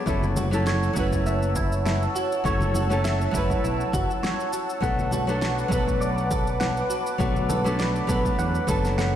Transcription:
0.06 fingered electric bass F#1, nylon-string guitar F#3 A3 C#4 E4 A4, clean electric guitar E4, analog synth pad C#5 F#5 A5 E6, kick, cabasa
0.23 low conga, cabasa
0.36 clean electric guitar F#4, high conga, low conga, cabasa
0.51 nylon-string guitar F#3 A3 C#4 E4 A4, cabasa
0.67 clean electric guitar C#5, snare, cabasa
0.83 cabasa
0.93 fingered electric bass F#1, nylon-string guitar F#3 A3 C#4, clean electric guitar F#4, kick, cabasa
0.98 nylon-string guitar E4 B4
1.12 kick, high conga, cabasa
1.26 clean electric guitar E5, cabasa
1.42 cabasa
1.56 clean electric guitar E4, kick, low conga, cabasa
1.72 cabasa
1.86 clean electric guitar E4, snare, high conga, cabasa
2.02 cabasa
2.16 clean electric guitar F#4, cabasa
2.32 cabasa
2.44 fingered electric bass F#1, nylon-string guitar F#3 A3 C#4 E4 A4, clean electric guitar C#5, kick, cabasa
2.60 low conga, cabasa
2.74 clean electric guitar F#4, high conga, low conga, cabasa
2.89 nylon-string guitar F#3 A3 C#4 E4 A4, cabasa
3.04 clean electric guitar E5, snare, cabasa
3.21 cabasa
3.31 fingered electric bass F#1, nylon-string guitar F#3 A3 C#4, clean electric guitar E4, kick, cabasa
3.36 nylon-string guitar E4 B4
3.50 kick, high conga, cabasa
3.64 fingered electric bass B1, clean electric guitar E4, cabasa
3.81 cabasa
3.93 fingered electric bass F#1, clean electric guitar F#4, kick, low conga, cabasa
4.11 cabasa
4.23 clean electric guitar C#5, snare, high conga, cabasa
4.40 cabasa
4.53 clean electric guitar F#4, cabasa
4.70 cabasa
4.80 fingered electric bass B1, nylon-string guitar F#3 A3 B3 D4 A4, analog synth pad B4 D6, clean electric guitar F#5, kick, cabasa
4.99 low conga, cabasa
5.11 clean electric guitar F#4, high conga, low conga, cabasa
5.27 nylon-string guitar F#3 A3 B3 D4 A4, cabasa
5.42 clean electric guitar F#4, snare, cabasa
5.58 cabasa
5.68 fingered electric bass B1, nylon-string guitar F#3 A3 B3, clean electric guitar A4, kick, cabasa
5.73 nylon-string guitar D4 B4
5.88 kick, high conga, cabasa
6.01 clean electric guitar D5, cabasa
6.18 cabasa
6.31 clean electric guitar A4, kick, low conga, cabasa
6.47 cabasa
6.60 clean electric guitar F#5, snare, high conga, cabasa
6.77 cabasa
6.90 clean electric guitar F#4, cabasa
7.07 cabasa
7.18 fingered electric bass B1, nylon-string guitar F#3 A3 B3 D4 A4, clean electric guitar F#4, analog synth pad B5, kick, cabasa
7.36 low conga, cabasa
7.49 clean electric guitar A4, high conga, low conga, cabasa
7.64 nylon-string guitar F#3 A3 B3 D4 A4, cabasa
7.79 clean electric guitar D5, snare, cabasa
7.96 cabasa
8.07 fingered electric bass B1, nylon-string guitar F#3 A3 B3 D4 B4, clean electric guitar A4, kick, cabasa
8.25 kick, high conga, cabasa
8.39 fingered electric bass E2, clean electric guitar F#5, cabasa
8.55 cabasa
8.67 fingered electric bass F#1, nylon-string guitar F#3 A3 B3 D4 A4, clean electric guitar B4, kick, low conga, cabasa
8.85 snare, cabasa
8.98 clean electric guitar F#5, snare, high conga, cabasa

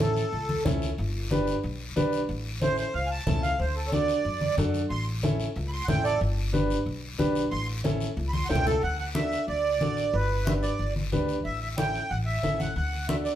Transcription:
Already playing: upright bass A1
0.00 upright piano C#4 E4 A4, accordion A4, high conga, short guiro
0.17 short guiro
0.32 upright bass C#2, long guiro
0.49 high conga
0.65 upright bass C#2, upright piano C#4 E4 A4, high conga, low conga, short guiro
0.82 short guiro
0.98 upright bass G1, long guiro
1.30 upright piano D4 G4 B4, high conga, short guiro
1.47 short guiro
1.64 upright bass B1, long guiro
1.96 upright bass B1, upright piano D4 G4 B4, high conga, short guiro
2.13 short guiro
2.29 upright bass A1, long guiro
2.62 upright piano C#4 E4 A4, accordion C5, high conga, short guiro
2.78 accordion C5, short guiro
2.94 upright bass C#2, accordion F5, long guiro
3.06 accordion G#5
3.11 accordion A5
3.27 upright bass C#2, upright piano C#4 E4 A4, high conga, low conga, short guiro
3.43 accordion F5, short guiro
3.59 upright bass D2, accordion C5, long guiro
3.76 accordion A4
3.88 accordion C#5
3.92 upright piano D4 F#4 A4, accordion D5, high conga, short guiro
4.08 short guiro
4.25 upright bass F#2, long guiro
4.41 high conga
4.57 upright bass F#2, upright piano D4 F#4 A4, high conga, short guiro
4.74 short guiro
4.90 upright bass A1, accordion C6, long guiro
5.23 upright piano C#4 E4 A4, high conga, short guiro
5.40 short guiro
5.56 upright bass C#2, long guiro
5.68 accordion B5
5.72 accordion C6
5.84 upright bass A1, upright piano C#4, accordion F#5
5.88 upright piano E4 A4, accordion G5, high conga, low conga, short guiro
6.04 accordion A4 D5, short guiro
6.21 upright bass G1, long guiro
6.53 upright piano D4 G4 B4, high conga, short guiro
6.70 short guiro
6.86 upright bass B1, long guiro
7.18 upright bass B1, upright piano D4 G4 B4, high conga, short guiro
7.35 short guiro
7.51 upright bass A1, accordion C6, long guiro
7.84 upright piano C#4 E4 A4, high conga, short guiro
8.01 short guiro
8.17 upright bass C#2, long guiro
8.28 accordion B5
8.33 accordion C6, high conga
8.45 accordion F#5
8.49 upright bass C#2, upright piano C#4 E4 A4, accordion G5, short guiro
8.55 low conga
8.66 accordion A4, low conga, short guiro
8.82 upright bass D2, accordion F#5, long guiro
8.99 accordion F#5, high conga
9.15 upright piano D4 F#4 A4, accordion E5, high conga, short guiro
9.32 short guiro
9.48 upright bass D2, accordion D5, high conga, long guiro
9.81 upright bass A1, upright piano D4 F#4 A4, high conga, short guiro
9.97 short guiro
10.14 upright bass G1, accordion B4, long guiro
10.31 high conga
10.46 upright piano D4 G4 B4, accordion E5, high conga, short guiro
10.62 accordion D5, short guiro
10.79 upright bass G1, high conga, long guiro
10.96 high conga
11.12 upright bass D2, upright piano D4 G4 B4, high conga, short guiro
11.29 short guiro
11.45 upright bass A1, accordion E5, long guiro
11.61 accordion E5, high conga
11.77 upright piano C#4 E4 A4, accordion G5, high conga, short guiro
11.94 short guiro
12.10 upright bass A1, accordion F#5, high conga, long guiro
12.26 accordion E5
12.43 upright bass A1, upright piano C#4 E4 A4, high conga, short guiro
12.59 accordion F#5, high conga, short guiro
12.76 upright bass D2, accordion F#5, long guiro
12.93 high conga
13.08 upright piano D4 F#4 A4, accordion E5, high conga, short guiro
13.25 accordion D5, short guiro

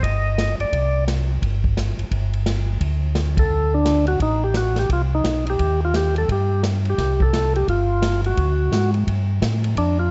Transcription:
0.03 tonewheel organ G1 D#5, kick, ride
0.38 snare, hi-hat pedal, ride
0.59 tonewheel organ G1 D5, ride
0.72 tonewheel organ C2, kick, ride
1.08 snare, hi-hat pedal, ride
1.42 tonewheel organ G1, kick, ride
1.64 kick
1.77 snare, hi-hat pedal, ride
1.98 tonewheel organ G1, ride
2.11 tonewheel organ G1, kick, ride
2.33 ride
2.46 snare, hi-hat pedal, ride
2.81 tonewheel organ D2, kick, ride
3.15 snare, hi-hat pedal, ride
3.37 tonewheel organ A4, kick, ride
3.50 tonewheel organ D2
3.74 tonewheel organ D4
3.85 snare, hi-hat pedal, ride
4.07 tonewheel organ F#4, ride
4.20 tonewheel organ A1 D#4, kick, ride
4.44 tonewheel organ G4
4.54 tonewheel organ F#4, snare, hi-hat pedal, ride
4.76 tonewheel organ G4, snare, ride
4.89 tonewheel organ C2 F4, kick, ride
5.15 tonewheel organ D#4
5.23 tonewheel organ B1, snare, hi-hat pedal, ride
5.47 tonewheel organ G4, ride
5.59 tonewheel organ D#2, kick, ride
5.85 tonewheel organ F4
5.94 tonewheel organ G4, snare, hi-hat pedal, ride
6.16 tonewheel organ A4, ride
6.28 tonewheel organ G2 G4, kick, ride
6.63 snare, hi-hat pedal, ride
6.85 ride
6.90 tonewheel organ G4
6.98 tonewheel organ C2, kick, snare, ride
7.20 tonewheel organ A4, kick
7.33 snare, hi-hat pedal, ride
7.56 tonewheel organ G4, ride
7.67 tonewheel organ G1 F4, kick, ride
8.02 snare, hi-hat pedal, ride
8.24 tonewheel organ F#4, ride
8.37 tonewheel organ D2, kick, ride
8.71 tonewheel organ G#2, snare, hi-hat pedal, ride
8.94 ride
9.07 tonewheel organ G2, kick, ride
9.41 tonewheel organ A2, kick, snare, hi-hat pedal, ride
9.64 ride
9.76 tonewheel organ F2 D4, kick, ride
9.99 tonewheel organ F4

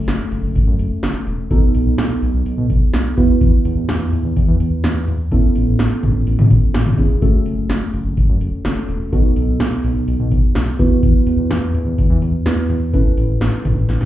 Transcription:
Already playing: synth keys A3 C#4 F#4 A4
0.08 analog synth bass F#1, snare, closed hi-hat
0.32 analog synth bass F#1, closed hi-hat
0.43 analog synth bass F#1
0.56 analog synth bass F#1, kick, closed hi-hat
0.67 analog synth bass F#2
0.79 analog synth bass F#1, closed hi-hat
1.03 analog synth bass F#1, snare, closed hi-hat
1.27 analog synth bass E1, closed hi-hat
1.51 analog synth bass B1, synth keys B3 D#4 F#4 A4, kick, closed hi-hat
1.74 analog synth bass B1, closed hi-hat
1.86 analog synth bass B1
1.98 analog synth bass B1, snare, closed hi-hat
2.22 analog synth bass B1, closed hi-hat
2.34 analog synth bass B1
2.46 analog synth bass B1, closed hi-hat
2.58 analog synth bass B2
2.70 analog synth bass B1, kick, closed hi-hat
2.94 analog synth bass B1, snare, closed hi-hat
3.17 analog synth bass E2, synth keys B3 E4 F#4 B4, kick, closed hi-hat
3.41 kick, closed hi-hat
3.65 analog synth bass E2, closed hi-hat
3.77 analog synth bass E2
3.89 analog synth bass E2, snare, closed hi-hat
4.13 analog synth bass E2, closed hi-hat
4.25 analog synth bass E2
4.36 analog synth bass E2, kick, closed hi-hat
4.48 analog synth bass E3
4.60 analog synth bass E2, closed hi-hat
4.84 analog synth bass E2, snare, closed hi-hat
5.08 analog synth bass E2, closed hi-hat
5.32 analog synth bass A1, synth keys B3 C#4 E4 A4, kick, closed hi-hat
5.55 analog synth bass A1, closed hi-hat
5.67 analog synth bass A1
5.79 analog synth bass A1, snare, closed hi-hat
6.03 analog synth bass A1, closed hi-hat, mid tom
6.15 analog synth bass A1
6.27 analog synth bass A1, closed hi-hat
6.39 analog synth bass A2, mid tom
6.51 analog synth bass A1, kick, closed hi-hat
6.74 analog synth bass A1, snare, closed hi-hat
6.86 mid tom
6.98 analog synth bass E1, synth keys B3 C#4 E4 G#4, kick, closed hi-hat
7.22 analog synth bass F#1, synth keys A3 C#4 F#4 A4, kick, closed hi-hat
7.46 analog synth bass F#1, closed hi-hat
7.58 analog synth bass F#1
7.70 analog synth bass F#1, snare, closed hi-hat
7.94 analog synth bass F#1, closed hi-hat
8.05 analog synth bass F#1
8.17 analog synth bass F#1, kick, closed hi-hat
8.29 analog synth bass F#2
8.41 analog synth bass F#1, closed hi-hat
8.65 analog synth bass F#1, synth keys A3 C#4 F#4 A4, snare, closed hi-hat
8.89 analog synth bass E1, closed hi-hat
9.12 analog synth bass B1, synth keys B3 D#4 F#4 A4, kick, closed hi-hat
9.36 analog synth bass B1, closed hi-hat
9.48 analog synth bass B1
9.60 analog synth bass B1, snare, closed hi-hat
9.84 analog synth bass B1, closed hi-hat
9.96 analog synth bass B1
10.08 analog synth bass B1, closed hi-hat
10.20 analog synth bass B2
10.31 analog synth bass B1, kick, closed hi-hat
10.55 analog synth bass B1, snare, closed hi-hat
10.79 analog synth bass E2, synth keys B3 E4 F#4 B4, kick, closed hi-hat
11.03 kick, closed hi-hat
11.27 analog synth bass E2, closed hi-hat
11.39 analog synth bass E2
11.50 analog synth bass E2, snare, closed hi-hat
11.74 analog synth bass E2, closed hi-hat
11.86 analog synth bass E2
11.98 analog synth bass E2, kick, closed hi-hat
12.10 analog synth bass E3
12.22 analog synth bass E2, closed hi-hat
12.46 analog synth bass E2, synth keys B3 E4 F#4 B4, snare, closed hi-hat
12.70 analog synth bass E2, closed hi-hat
12.94 analog synth bass A1, synth keys C#4 E4 A4 B4, kick, closed hi-hat
13.17 analog synth bass A1, closed hi-hat
13.29 analog synth bass A1
13.41 analog synth bass A1, snare, closed hi-hat
13.65 analog synth bass A1, closed hi-hat, mid tom
13.77 analog synth bass A1
13.89 analog synth bass A1, snare, closed hi-hat
14.01 analog synth bass A2, snare

